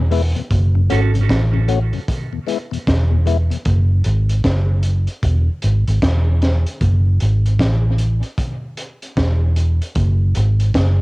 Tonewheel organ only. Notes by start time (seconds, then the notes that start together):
0.11 G#3 B3 E4
0.36 E2 B2
0.75 F#2 C#3
0.90 A3 C#4 F#4
1.14 F#2 C#3
1.53 F#2 C#3
1.68 A3 C#4 F#4
1.93 F#2 C#3
2.32 E2 B2
2.46 G#3 B3 E4
2.71 E2 B2
3.11 E2 B2
3.26 G#3 B3 E4
3.50 E2 B2